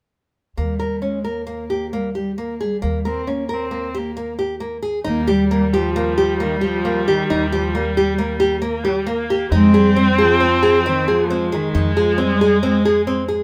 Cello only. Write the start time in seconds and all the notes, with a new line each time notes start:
0.59 G3
1.03 G#3
1.26 A#3
1.48 A#3
1.94 G3
2.17 G3
2.39 A#3
2.62 G3
3.07 C4
3.29 A#3
3.53 C4
3.98 A#3
5.07 A#3
5.29 G3
5.74 F3
6.42 D#3
6.56 G3
6.64 F3
7.07 D#3
7.52 F3
7.75 G3
8.20 A#3
9.53 G#3
9.73 G3
10.20 F3
10.85 D#3
11.07 F3
11.54 D#3
11.97 F3
12.20 G3
12.65 G#3